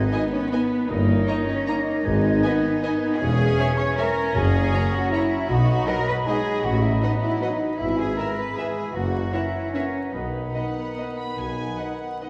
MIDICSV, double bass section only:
0, 0, Header, 1, 2, 480
1, 0, Start_track
1, 0, Key_signature, 5, "major"
1, 0, Tempo, 387597
1, 1105, Time_signature, 3, 2, 24, 8
1, 3501, Tempo, 382409
1, 11661, Tempo, 410116
1, 15136, End_track
2, 0, Start_track
2, 0, Title_t, "Double bass section"
2, 0, Program_c, 0, 48
2, 1118, Note_on_c, 0, 31, 77
2, 1503, Note_off_c, 0, 31, 0
2, 2537, Note_on_c, 0, 32, 77
2, 2929, Note_off_c, 0, 32, 0
2, 3983, Note_on_c, 0, 28, 75
2, 4366, Note_off_c, 0, 28, 0
2, 5419, Note_on_c, 0, 30, 79
2, 5804, Note_off_c, 0, 30, 0
2, 6860, Note_on_c, 0, 35, 77
2, 7241, Note_off_c, 0, 35, 0
2, 8290, Note_on_c, 0, 33, 66
2, 8682, Note_off_c, 0, 33, 0
2, 9749, Note_on_c, 0, 32, 58
2, 10136, Note_off_c, 0, 32, 0
2, 11190, Note_on_c, 0, 30, 54
2, 11583, Note_off_c, 0, 30, 0
2, 12620, Note_on_c, 0, 35, 45
2, 13008, Note_off_c, 0, 35, 0
2, 14056, Note_on_c, 0, 35, 44
2, 14444, Note_off_c, 0, 35, 0
2, 15136, End_track
0, 0, End_of_file